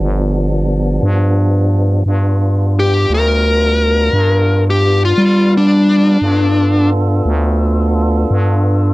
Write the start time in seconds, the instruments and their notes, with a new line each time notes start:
Already playing: tonewheel organ F3 G3 B3 D4
0.00 fm bass G1
1.03 fm bass G2
2.06 fm bass G2, tonewheel organ G3 B3 D4 F4
2.79 lead electric guitar G4
3.10 fm bass D2
3.14 lead electric guitar A#4
4.13 fm bass G2
4.70 lead electric guitar G4
5.05 lead electric guitar F4
5.18 fm bass G3
5.57 lead electric guitar D4
6.22 fm bass G2, tonewheel organ B3 D4 F4 A4
7.25 fm bass D2
8.31 fm bass G2